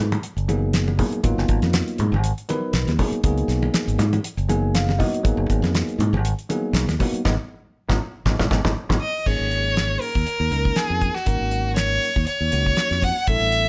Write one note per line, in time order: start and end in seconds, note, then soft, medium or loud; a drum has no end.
0.00 0.16 G#2 medium
0.12 closed hi-hat soft
0.12 high conga medium
0.12 low conga medium
0.23 closed hi-hat medium
0.37 1.02 F#1 medium
0.37 closed hi-hat soft
0.48 0.90 F#3 medium
0.48 0.90 A#3 medium
0.48 0.90 B3 medium
0.48 0.91 D#4 medium
0.48 0.91 G#4 medium
0.48 closed hi-hat medium
0.48 high conga medium
0.73 snare medium
0.73 closed hi-hat medium
0.88 high conga medium
0.98 1.19 F#3 medium
0.98 1.19 A#3 medium
0.98 1.20 B3 medium
0.98 1.20 D#4 medium
0.98 1.20 G#4 medium
0.98 kick medium
0.98 open hi-hat medium
0.98 low conga medium
1.12 closed hi-hat soft
1.23 1.34 G#1 medium
1.23 2.06 F#3 medium
1.23 2.06 A#3 medium
1.23 2.06 B3 medium
1.23 2.06 D#4 medium
1.23 2.06 F4 medium
1.23 kick loud
1.23 closed hi-hat medium
1.38 1.46 F#1 medium
1.38 snare soft
1.48 1.59 G#1 medium
1.48 kick medium
1.48 closed hi-hat medium
1.62 1.81 F2 medium
1.62 snare soft
1.62 closed hi-hat soft
1.62 high conga medium
1.73 snare loud
1.73 closed hi-hat medium
1.88 closed hi-hat soft
1.98 2.13 G#2 medium
1.98 closed hi-hat soft
1.98 low conga medium
2.12 2.31 G#1 medium
2.12 high conga medium
2.24 closed hi-hat medium
2.38 closed hi-hat soft
2.49 2.91 F#3 medium
2.49 2.91 B3 medium
2.49 2.91 D#4 medium
2.49 2.91 A#4 medium
2.49 2.91 B4 medium
2.49 closed hi-hat medium
2.49 high conga medium
2.73 2.84 B1 medium
2.73 snare loud
2.73 closed hi-hat medium
2.87 2.96 D#2 medium
2.87 snare soft
2.87 closed hi-hat soft
2.87 high conga medium
2.99 3.20 F#3 medium
2.99 3.20 A#3 medium
2.99 3.20 B3 medium
2.99 3.20 D#4 medium
2.99 3.21 G#4 medium
2.99 kick medium
2.99 open hi-hat medium
2.99 low conga medium
3.12 muted fingered electric bass stroke soft
3.12 closed hi-hat soft
3.24 3.43 C#2 medium
3.24 4.06 F#3 medium
3.24 4.06 A#3 medium
3.24 4.06 B3 medium
3.24 4.07 D#4 medium
3.24 4.07 G#4 loud
3.24 kick loud
3.24 closed hi-hat medium
3.38 closed hi-hat soft
3.48 3.67 B1 medium
3.48 snare soft
3.48 closed hi-hat medium
3.62 high conga medium
3.74 muted fingered electric bass stroke soft
3.74 snare loud
3.74 closed hi-hat medium
3.88 3.96 G#1 medium
3.88 closed hi-hat soft
3.98 4.18 G#2 medium
3.98 snare soft
3.98 closed hi-hat medium
3.98 low conga medium
4.13 closed hi-hat soft
4.13 high conga medium
4.24 closed hi-hat medium
4.37 5.03 F#1 medium
4.37 closed hi-hat soft
4.49 4.91 F#3 medium
4.49 4.91 A#3 medium
4.49 4.91 B3 medium
4.49 4.91 D#4 medium
4.49 4.92 G#4 medium
4.49 4.73 G#5 medium
4.49 closed hi-hat medium
4.49 high conga medium
4.75 4.98 F5 medium
4.75 snare medium
4.75 closed hi-hat medium
4.89 snare soft
4.89 high conga medium
4.98 5.20 F#3 medium
4.98 5.20 A#3 medium
4.98 5.20 B3 medium
4.98 5.20 D#4 medium
4.98 5.20 F#4 medium
4.98 5.23 D#5 medium
4.98 kick medium
4.98 open hi-hat medium
4.98 low conga medium
5.14 closed hi-hat soft
5.23 5.35 G#1 medium
5.23 6.06 F#3 medium
5.23 6.07 A#3 medium
5.23 6.07 B3 medium
5.23 6.07 D#4 medium
5.23 6.07 G#4 medium
5.23 kick loud
5.23 closed hi-hat medium
5.37 5.46 F#1 medium
5.50 5.60 G#1 medium
5.50 kick medium
5.50 closed hi-hat medium
5.62 5.82 F2 medium
5.62 snare soft
5.62 closed hi-hat soft
5.62 high conga medium
5.75 snare loud
5.75 closed hi-hat medium
5.89 closed hi-hat soft
5.99 6.14 G#2 medium
5.99 closed hi-hat medium
5.99 low conga medium
6.13 6.32 G#1 medium
6.13 high conga medium
6.25 closed hi-hat medium
6.39 closed hi-hat soft
6.49 6.91 F#3 medium
6.49 6.92 A#3 medium
6.49 6.92 B3 medium
6.49 6.92 D#4 medium
6.49 6.92 G#4 medium
6.49 closed hi-hat medium
6.49 high conga medium
6.73 6.84 B1 loud
6.73 snare loud
6.73 closed hi-hat medium
6.87 6.96 D#2 medium
6.87 snare soft
6.87 closed hi-hat soft
6.87 high conga medium
6.99 7.21 F#3 medium
6.99 7.21 A#3 medium
6.99 7.21 B3 medium
6.99 7.21 D#4 medium
6.99 7.21 F#4 medium
6.99 kick medium
6.99 open hi-hat medium
6.99 low conga medium
7.13 muted fingered electric bass stroke soft
7.13 closed hi-hat soft
7.25 7.36 G#1 loud
7.25 7.34 G#3 loud
7.25 7.34 B3 loud
7.25 7.34 D#4 medium
7.25 kick medium
7.25 snare medium
7.25 low conga medium
7.89 7.98 G#1 medium
7.89 7.96 G#3 medium
7.89 7.96 B3 loud
7.89 7.96 D#4 loud
7.89 kick medium
7.89 snare medium
7.89 low conga medium
8.25 8.36 G#1 loud
8.25 8.35 G#3 medium
8.25 8.35 B3 medium
8.25 8.35 D#4 medium
8.25 kick medium
8.25 snare medium
8.25 low conga medium
8.39 8.48 G#1 medium
8.39 8.47 G#3 medium
8.39 8.47 B3 medium
8.39 8.47 D#4 medium
8.39 kick medium
8.39 snare medium
8.39 low conga loud
8.51 8.61 G#1 loud
8.51 8.60 G#3 medium
8.51 8.60 B3 medium
8.51 8.60 D#4 medium
8.51 kick medium
8.51 snare medium
8.51 low conga medium
8.65 8.73 G#1 medium
8.65 8.72 G#3 medium
8.65 8.72 B3 medium
8.65 8.72 D#4 medium
8.65 kick medium
8.65 snare medium
8.65 low conga loud
8.89 8.98 G#1 medium
8.89 8.97 G#3 loud
8.89 8.97 B3 loud
8.89 8.97 D#4 medium
8.89 kick medium
8.89 snare medium
8.89 low conga medium
9.01 9.28 D#5 medium
9.26 9.37 G#1 medium
9.26 10.08 F#3 medium
9.26 10.08 A#3 medium
9.26 10.08 C#4 medium
9.26 10.09 D#4 medium
9.26 10.09 G#4 medium
9.26 10.02 C#5 medium
9.26 kick medium
9.26 crash medium
9.40 9.96 G#1 medium
9.51 closed hi-hat medium
9.77 snare loud
9.77 closed hi-hat medium
10.01 10.78 A#4 medium
10.01 open hi-hat medium
10.15 10.24 D#2 medium
10.15 kick medium
10.26 muted fingered electric bass stroke soft
10.26 closed hi-hat medium
10.40 10.48 D#2 medium
10.51 10.70 C#2 medium
10.51 11.14 F#3 medium
10.51 11.14 A#3 soft
10.51 11.14 C#4 medium
10.51 11.14 D#4 medium
10.51 11.14 A#4 medium
10.51 closed hi-hat soft
10.65 kick medium
10.76 11.16 G#4 medium
10.76 snare medium
10.76 closed hi-hat medium
10.90 11.09 F2 medium
11.01 kick medium
11.01 closed hi-hat soft
11.15 11.75 F#4 medium
11.15 snare soft
11.26 11.37 G#1 medium
11.26 12.09 F#3 medium
11.26 12.09 A#3 medium
11.26 12.09 C#4 medium
11.26 12.09 D#4 medium
11.26 12.09 A#4 medium
11.26 kick medium
11.26 closed hi-hat medium
11.41 11.97 G#1 medium
11.51 closed hi-hat medium
11.76 12.23 C#5 medium
11.76 snare medium
11.76 closed hi-hat medium
12.02 open hi-hat medium
12.16 12.25 D#2 medium
12.16 kick medium
12.27 13.05 C#5 medium
12.27 muted fingered electric bass stroke soft
12.27 closed hi-hat medium
12.41 12.49 D#2 medium
12.52 12.72 C#2 medium
12.52 13.15 F#3 medium
12.52 13.15 A#3 medium
12.52 13.15 C#4 soft
12.52 13.15 D#4 soft
12.52 13.15 F#4 medium
12.52 closed hi-hat medium
12.66 kick medium
12.77 snare medium
12.77 closed hi-hat medium
12.91 13.10 F2 medium
12.91 snare soft
13.02 13.29 F#5 medium
13.02 kick medium
13.02 open hi-hat medium
13.27 13.38 A1 medium
13.27 13.69 G3 medium
13.27 13.69 B3 medium
13.27 13.69 D4 medium
13.27 13.69 E4 medium
13.27 13.69 A4 medium
13.27 13.69 E5 medium
13.27 kick medium
13.27 closed hi-hat medium
13.40 13.69 A1 medium
13.52 closed hi-hat medium